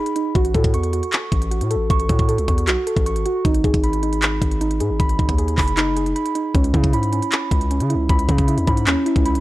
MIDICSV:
0, 0, Header, 1, 4, 480
1, 0, Start_track
1, 0, Tempo, 387097
1, 436, Time_signature, 4, 2, 24, 8
1, 11660, End_track
2, 0, Start_track
2, 0, Title_t, "Synth keys"
2, 0, Program_c, 0, 88
2, 0, Note_on_c, 0, 63, 101
2, 0, Note_on_c, 0, 68, 80
2, 0, Note_on_c, 0, 83, 92
2, 181, Note_off_c, 0, 63, 0
2, 196, Note_on_c, 0, 63, 82
2, 435, Note_off_c, 0, 83, 0
2, 436, Note_off_c, 0, 63, 0
2, 436, Note_off_c, 0, 68, 0
2, 439, Note_on_c, 0, 66, 104
2, 680, Note_on_c, 0, 69, 86
2, 918, Note_on_c, 0, 85, 97
2, 1142, Note_off_c, 0, 66, 0
2, 1157, Note_on_c, 0, 66, 80
2, 1857, Note_off_c, 0, 66, 0
2, 1872, Note_on_c, 0, 66, 86
2, 2101, Note_off_c, 0, 69, 0
2, 2116, Note_on_c, 0, 69, 93
2, 2343, Note_off_c, 0, 85, 0
2, 2358, Note_on_c, 0, 85, 112
2, 2584, Note_off_c, 0, 66, 0
2, 2599, Note_on_c, 0, 66, 80
2, 2821, Note_off_c, 0, 69, 0
2, 2836, Note_on_c, 0, 69, 87
2, 3062, Note_off_c, 0, 85, 0
2, 3076, Note_on_c, 0, 85, 85
2, 3301, Note_off_c, 0, 66, 0
2, 3316, Note_on_c, 0, 66, 97
2, 3540, Note_off_c, 0, 69, 0
2, 3555, Note_on_c, 0, 69, 85
2, 3782, Note_off_c, 0, 85, 0
2, 3796, Note_on_c, 0, 85, 97
2, 4022, Note_off_c, 0, 66, 0
2, 4037, Note_on_c, 0, 66, 96
2, 4276, Note_off_c, 0, 69, 0
2, 4276, Note_off_c, 0, 85, 0
2, 4277, Note_off_c, 0, 66, 0
2, 4282, Note_on_c, 0, 63, 102
2, 4518, Note_on_c, 0, 68, 87
2, 4755, Note_on_c, 0, 83, 94
2, 4982, Note_off_c, 0, 63, 0
2, 4997, Note_on_c, 0, 63, 81
2, 5701, Note_off_c, 0, 63, 0
2, 5716, Note_on_c, 0, 63, 88
2, 5942, Note_off_c, 0, 68, 0
2, 5957, Note_on_c, 0, 68, 86
2, 6178, Note_off_c, 0, 83, 0
2, 6193, Note_on_c, 0, 83, 97
2, 6416, Note_off_c, 0, 63, 0
2, 6431, Note_on_c, 0, 63, 77
2, 6663, Note_off_c, 0, 68, 0
2, 6678, Note_on_c, 0, 68, 93
2, 6900, Note_off_c, 0, 83, 0
2, 6914, Note_on_c, 0, 83, 96
2, 7140, Note_off_c, 0, 63, 0
2, 7155, Note_on_c, 0, 63, 101
2, 7381, Note_off_c, 0, 68, 0
2, 7395, Note_on_c, 0, 68, 79
2, 7618, Note_off_c, 0, 83, 0
2, 7632, Note_on_c, 0, 83, 97
2, 7861, Note_off_c, 0, 63, 0
2, 7876, Note_on_c, 0, 63, 81
2, 8114, Note_off_c, 0, 83, 0
2, 8114, Note_on_c, 0, 61, 98
2, 8116, Note_off_c, 0, 63, 0
2, 8116, Note_off_c, 0, 68, 0
2, 8354, Note_on_c, 0, 64, 88
2, 8600, Note_on_c, 0, 83, 95
2, 8821, Note_off_c, 0, 61, 0
2, 8836, Note_on_c, 0, 61, 79
2, 9542, Note_off_c, 0, 61, 0
2, 9557, Note_on_c, 0, 61, 84
2, 9778, Note_off_c, 0, 64, 0
2, 9793, Note_on_c, 0, 64, 90
2, 10022, Note_off_c, 0, 83, 0
2, 10037, Note_on_c, 0, 83, 111
2, 10262, Note_off_c, 0, 61, 0
2, 10277, Note_on_c, 0, 61, 76
2, 10501, Note_off_c, 0, 64, 0
2, 10516, Note_on_c, 0, 64, 91
2, 10744, Note_off_c, 0, 83, 0
2, 10759, Note_on_c, 0, 83, 97
2, 10982, Note_off_c, 0, 61, 0
2, 10997, Note_on_c, 0, 61, 96
2, 11219, Note_off_c, 0, 64, 0
2, 11233, Note_on_c, 0, 64, 86
2, 11462, Note_off_c, 0, 83, 0
2, 11477, Note_on_c, 0, 83, 93
2, 11660, Note_off_c, 0, 61, 0
2, 11660, Note_off_c, 0, 64, 0
2, 11660, Note_off_c, 0, 83, 0
2, 11660, End_track
3, 0, Start_track
3, 0, Title_t, "808-style bass"
3, 0, Program_c, 1, 38
3, 436, Note_on_c, 1, 33, 111
3, 667, Note_off_c, 1, 33, 0
3, 675, Note_on_c, 1, 45, 105
3, 916, Note_on_c, 1, 40, 100
3, 935, Note_off_c, 1, 45, 0
3, 1258, Note_off_c, 1, 40, 0
3, 1635, Note_on_c, 1, 33, 104
3, 1996, Note_on_c, 1, 45, 99
3, 2014, Note_off_c, 1, 33, 0
3, 2176, Note_on_c, 1, 33, 96
3, 2194, Note_off_c, 1, 45, 0
3, 2347, Note_off_c, 1, 33, 0
3, 2356, Note_on_c, 1, 33, 114
3, 2587, Note_off_c, 1, 33, 0
3, 2596, Note_on_c, 1, 45, 108
3, 2956, Note_on_c, 1, 37, 102
3, 2975, Note_off_c, 1, 45, 0
3, 3070, Note_off_c, 1, 37, 0
3, 3076, Note_on_c, 1, 40, 106
3, 3316, Note_on_c, 1, 35, 101
3, 3335, Note_off_c, 1, 40, 0
3, 3430, Note_off_c, 1, 35, 0
3, 3677, Note_on_c, 1, 33, 108
3, 3917, Note_on_c, 1, 32, 101
3, 3935, Note_off_c, 1, 33, 0
3, 4030, Note_off_c, 1, 32, 0
3, 4277, Note_on_c, 1, 32, 111
3, 4507, Note_off_c, 1, 32, 0
3, 4516, Note_on_c, 1, 32, 104
3, 4631, Note_off_c, 1, 32, 0
3, 4637, Note_on_c, 1, 32, 103
3, 5443, Note_off_c, 1, 32, 0
3, 5476, Note_on_c, 1, 32, 103
3, 5957, Note_on_c, 1, 44, 96
3, 5976, Note_off_c, 1, 32, 0
3, 6077, Note_on_c, 1, 32, 97
3, 6095, Note_off_c, 1, 44, 0
3, 6191, Note_off_c, 1, 32, 0
3, 6196, Note_on_c, 1, 32, 109
3, 6427, Note_off_c, 1, 32, 0
3, 6436, Note_on_c, 1, 32, 102
3, 6552, Note_off_c, 1, 32, 0
3, 6557, Note_on_c, 1, 39, 106
3, 6902, Note_off_c, 1, 39, 0
3, 6917, Note_on_c, 1, 30, 105
3, 7608, Note_off_c, 1, 30, 0
3, 8117, Note_on_c, 1, 37, 109
3, 8347, Note_off_c, 1, 37, 0
3, 8356, Note_on_c, 1, 49, 107
3, 8597, Note_on_c, 1, 44, 100
3, 8615, Note_off_c, 1, 49, 0
3, 8939, Note_off_c, 1, 44, 0
3, 9316, Note_on_c, 1, 37, 105
3, 9677, Note_on_c, 1, 49, 102
3, 9695, Note_off_c, 1, 37, 0
3, 9856, Note_on_c, 1, 37, 97
3, 9875, Note_off_c, 1, 49, 0
3, 10027, Note_off_c, 1, 37, 0
3, 10036, Note_on_c, 1, 37, 110
3, 10267, Note_off_c, 1, 37, 0
3, 10276, Note_on_c, 1, 49, 102
3, 10636, Note_on_c, 1, 40, 99
3, 10654, Note_off_c, 1, 49, 0
3, 10750, Note_off_c, 1, 40, 0
3, 10756, Note_on_c, 1, 44, 107
3, 10996, Note_on_c, 1, 39, 100
3, 11015, Note_off_c, 1, 44, 0
3, 11110, Note_off_c, 1, 39, 0
3, 11356, Note_on_c, 1, 37, 112
3, 11596, Note_on_c, 1, 35, 98
3, 11614, Note_off_c, 1, 37, 0
3, 11660, Note_off_c, 1, 35, 0
3, 11660, End_track
4, 0, Start_track
4, 0, Title_t, "Drums"
4, 76, Note_on_c, 9, 42, 60
4, 196, Note_off_c, 9, 42, 0
4, 196, Note_on_c, 9, 42, 78
4, 320, Note_off_c, 9, 42, 0
4, 436, Note_on_c, 9, 36, 121
4, 436, Note_on_c, 9, 42, 68
4, 554, Note_off_c, 9, 42, 0
4, 554, Note_on_c, 9, 42, 59
4, 560, Note_off_c, 9, 36, 0
4, 675, Note_off_c, 9, 42, 0
4, 675, Note_on_c, 9, 36, 92
4, 675, Note_on_c, 9, 42, 49
4, 795, Note_off_c, 9, 42, 0
4, 795, Note_on_c, 9, 42, 83
4, 796, Note_off_c, 9, 36, 0
4, 796, Note_on_c, 9, 36, 107
4, 915, Note_off_c, 9, 42, 0
4, 915, Note_on_c, 9, 42, 76
4, 920, Note_off_c, 9, 36, 0
4, 1035, Note_off_c, 9, 42, 0
4, 1035, Note_on_c, 9, 42, 55
4, 1155, Note_off_c, 9, 42, 0
4, 1155, Note_on_c, 9, 42, 67
4, 1277, Note_off_c, 9, 42, 0
4, 1277, Note_on_c, 9, 42, 64
4, 1395, Note_off_c, 9, 42, 0
4, 1395, Note_on_c, 9, 42, 86
4, 1397, Note_on_c, 9, 39, 113
4, 1519, Note_off_c, 9, 42, 0
4, 1521, Note_off_c, 9, 39, 0
4, 1636, Note_on_c, 9, 36, 92
4, 1637, Note_on_c, 9, 42, 79
4, 1758, Note_off_c, 9, 42, 0
4, 1758, Note_on_c, 9, 42, 51
4, 1760, Note_off_c, 9, 36, 0
4, 1878, Note_off_c, 9, 42, 0
4, 1878, Note_on_c, 9, 42, 76
4, 1997, Note_off_c, 9, 42, 0
4, 1997, Note_on_c, 9, 42, 62
4, 2116, Note_off_c, 9, 42, 0
4, 2116, Note_on_c, 9, 42, 79
4, 2240, Note_off_c, 9, 42, 0
4, 2356, Note_on_c, 9, 36, 120
4, 2356, Note_on_c, 9, 42, 68
4, 2475, Note_off_c, 9, 42, 0
4, 2475, Note_on_c, 9, 42, 60
4, 2480, Note_off_c, 9, 36, 0
4, 2595, Note_off_c, 9, 42, 0
4, 2595, Note_on_c, 9, 42, 78
4, 2596, Note_on_c, 9, 36, 97
4, 2715, Note_off_c, 9, 42, 0
4, 2715, Note_on_c, 9, 42, 56
4, 2717, Note_off_c, 9, 36, 0
4, 2717, Note_on_c, 9, 36, 105
4, 2836, Note_off_c, 9, 42, 0
4, 2836, Note_on_c, 9, 42, 74
4, 2841, Note_off_c, 9, 36, 0
4, 2956, Note_off_c, 9, 42, 0
4, 2956, Note_on_c, 9, 42, 56
4, 3076, Note_off_c, 9, 42, 0
4, 3076, Note_on_c, 9, 42, 67
4, 3077, Note_on_c, 9, 36, 94
4, 3198, Note_off_c, 9, 42, 0
4, 3198, Note_on_c, 9, 42, 64
4, 3201, Note_off_c, 9, 36, 0
4, 3316, Note_off_c, 9, 42, 0
4, 3316, Note_on_c, 9, 42, 87
4, 3317, Note_on_c, 9, 39, 110
4, 3440, Note_off_c, 9, 42, 0
4, 3441, Note_off_c, 9, 39, 0
4, 3558, Note_on_c, 9, 42, 78
4, 3676, Note_on_c, 9, 36, 94
4, 3678, Note_off_c, 9, 42, 0
4, 3678, Note_on_c, 9, 42, 52
4, 3798, Note_off_c, 9, 42, 0
4, 3798, Note_on_c, 9, 42, 81
4, 3800, Note_off_c, 9, 36, 0
4, 3917, Note_off_c, 9, 42, 0
4, 3917, Note_on_c, 9, 42, 60
4, 4037, Note_off_c, 9, 42, 0
4, 4037, Note_on_c, 9, 42, 78
4, 4161, Note_off_c, 9, 42, 0
4, 4277, Note_on_c, 9, 36, 116
4, 4277, Note_on_c, 9, 42, 67
4, 4395, Note_off_c, 9, 42, 0
4, 4395, Note_on_c, 9, 42, 62
4, 4401, Note_off_c, 9, 36, 0
4, 4516, Note_off_c, 9, 42, 0
4, 4516, Note_on_c, 9, 36, 93
4, 4516, Note_on_c, 9, 42, 50
4, 4636, Note_off_c, 9, 42, 0
4, 4636, Note_on_c, 9, 42, 83
4, 4637, Note_off_c, 9, 36, 0
4, 4637, Note_on_c, 9, 36, 105
4, 4756, Note_off_c, 9, 42, 0
4, 4756, Note_on_c, 9, 42, 73
4, 4761, Note_off_c, 9, 36, 0
4, 4875, Note_off_c, 9, 42, 0
4, 4875, Note_on_c, 9, 42, 55
4, 4995, Note_off_c, 9, 42, 0
4, 4995, Note_on_c, 9, 42, 67
4, 5117, Note_off_c, 9, 42, 0
4, 5117, Note_on_c, 9, 42, 62
4, 5235, Note_off_c, 9, 42, 0
4, 5235, Note_on_c, 9, 42, 89
4, 5237, Note_on_c, 9, 39, 111
4, 5359, Note_off_c, 9, 42, 0
4, 5361, Note_off_c, 9, 39, 0
4, 5476, Note_on_c, 9, 36, 88
4, 5477, Note_on_c, 9, 42, 77
4, 5598, Note_off_c, 9, 42, 0
4, 5598, Note_on_c, 9, 42, 50
4, 5600, Note_off_c, 9, 36, 0
4, 5717, Note_off_c, 9, 42, 0
4, 5717, Note_on_c, 9, 42, 78
4, 5837, Note_off_c, 9, 42, 0
4, 5837, Note_on_c, 9, 42, 62
4, 5956, Note_off_c, 9, 42, 0
4, 5956, Note_on_c, 9, 42, 77
4, 6080, Note_off_c, 9, 42, 0
4, 6196, Note_on_c, 9, 36, 121
4, 6196, Note_on_c, 9, 42, 67
4, 6315, Note_off_c, 9, 42, 0
4, 6315, Note_on_c, 9, 42, 61
4, 6320, Note_off_c, 9, 36, 0
4, 6436, Note_on_c, 9, 36, 97
4, 6437, Note_off_c, 9, 42, 0
4, 6437, Note_on_c, 9, 42, 50
4, 6557, Note_off_c, 9, 36, 0
4, 6557, Note_off_c, 9, 42, 0
4, 6557, Note_on_c, 9, 36, 104
4, 6557, Note_on_c, 9, 42, 84
4, 6677, Note_off_c, 9, 42, 0
4, 6677, Note_on_c, 9, 42, 76
4, 6681, Note_off_c, 9, 36, 0
4, 6796, Note_off_c, 9, 42, 0
4, 6796, Note_on_c, 9, 42, 54
4, 6916, Note_on_c, 9, 39, 96
4, 6916, Note_on_c, 9, 46, 74
4, 6917, Note_on_c, 9, 36, 98
4, 6920, Note_off_c, 9, 42, 0
4, 7038, Note_on_c, 9, 42, 62
4, 7040, Note_off_c, 9, 39, 0
4, 7040, Note_off_c, 9, 46, 0
4, 7041, Note_off_c, 9, 36, 0
4, 7156, Note_off_c, 9, 42, 0
4, 7156, Note_on_c, 9, 42, 86
4, 7158, Note_on_c, 9, 39, 118
4, 7280, Note_off_c, 9, 42, 0
4, 7282, Note_off_c, 9, 39, 0
4, 7397, Note_on_c, 9, 42, 79
4, 7517, Note_off_c, 9, 42, 0
4, 7517, Note_on_c, 9, 42, 51
4, 7638, Note_off_c, 9, 42, 0
4, 7638, Note_on_c, 9, 42, 81
4, 7757, Note_off_c, 9, 42, 0
4, 7757, Note_on_c, 9, 42, 62
4, 7877, Note_off_c, 9, 42, 0
4, 7877, Note_on_c, 9, 42, 75
4, 8001, Note_off_c, 9, 42, 0
4, 8117, Note_on_c, 9, 36, 118
4, 8117, Note_on_c, 9, 42, 69
4, 8236, Note_off_c, 9, 42, 0
4, 8236, Note_on_c, 9, 42, 61
4, 8241, Note_off_c, 9, 36, 0
4, 8356, Note_on_c, 9, 36, 95
4, 8357, Note_off_c, 9, 42, 0
4, 8357, Note_on_c, 9, 42, 48
4, 8477, Note_off_c, 9, 36, 0
4, 8477, Note_off_c, 9, 42, 0
4, 8477, Note_on_c, 9, 36, 103
4, 8477, Note_on_c, 9, 42, 82
4, 8597, Note_off_c, 9, 42, 0
4, 8597, Note_on_c, 9, 42, 75
4, 8601, Note_off_c, 9, 36, 0
4, 8716, Note_off_c, 9, 42, 0
4, 8716, Note_on_c, 9, 42, 55
4, 8836, Note_off_c, 9, 42, 0
4, 8836, Note_on_c, 9, 42, 67
4, 8958, Note_off_c, 9, 42, 0
4, 8958, Note_on_c, 9, 42, 62
4, 9075, Note_off_c, 9, 42, 0
4, 9075, Note_on_c, 9, 42, 90
4, 9077, Note_on_c, 9, 39, 117
4, 9199, Note_off_c, 9, 42, 0
4, 9201, Note_off_c, 9, 39, 0
4, 9316, Note_on_c, 9, 36, 91
4, 9317, Note_on_c, 9, 42, 77
4, 9438, Note_off_c, 9, 42, 0
4, 9438, Note_on_c, 9, 42, 52
4, 9440, Note_off_c, 9, 36, 0
4, 9557, Note_off_c, 9, 42, 0
4, 9557, Note_on_c, 9, 42, 78
4, 9676, Note_off_c, 9, 42, 0
4, 9676, Note_on_c, 9, 42, 62
4, 9797, Note_off_c, 9, 42, 0
4, 9797, Note_on_c, 9, 42, 75
4, 9921, Note_off_c, 9, 42, 0
4, 10036, Note_on_c, 9, 36, 117
4, 10036, Note_on_c, 9, 42, 70
4, 10155, Note_off_c, 9, 42, 0
4, 10155, Note_on_c, 9, 42, 63
4, 10160, Note_off_c, 9, 36, 0
4, 10275, Note_off_c, 9, 42, 0
4, 10275, Note_on_c, 9, 42, 78
4, 10276, Note_on_c, 9, 36, 95
4, 10394, Note_off_c, 9, 42, 0
4, 10394, Note_on_c, 9, 42, 60
4, 10397, Note_off_c, 9, 36, 0
4, 10397, Note_on_c, 9, 36, 105
4, 10515, Note_off_c, 9, 42, 0
4, 10515, Note_on_c, 9, 42, 76
4, 10521, Note_off_c, 9, 36, 0
4, 10635, Note_off_c, 9, 42, 0
4, 10635, Note_on_c, 9, 42, 56
4, 10755, Note_off_c, 9, 42, 0
4, 10755, Note_on_c, 9, 42, 66
4, 10756, Note_on_c, 9, 36, 95
4, 10877, Note_off_c, 9, 42, 0
4, 10877, Note_on_c, 9, 42, 62
4, 10880, Note_off_c, 9, 36, 0
4, 10995, Note_off_c, 9, 42, 0
4, 10995, Note_on_c, 9, 42, 87
4, 10997, Note_on_c, 9, 39, 114
4, 11119, Note_off_c, 9, 42, 0
4, 11121, Note_off_c, 9, 39, 0
4, 11237, Note_on_c, 9, 42, 75
4, 11356, Note_on_c, 9, 36, 93
4, 11357, Note_off_c, 9, 42, 0
4, 11357, Note_on_c, 9, 42, 52
4, 11477, Note_off_c, 9, 42, 0
4, 11477, Note_on_c, 9, 42, 78
4, 11480, Note_off_c, 9, 36, 0
4, 11596, Note_off_c, 9, 42, 0
4, 11596, Note_on_c, 9, 42, 60
4, 11660, Note_off_c, 9, 42, 0
4, 11660, End_track
0, 0, End_of_file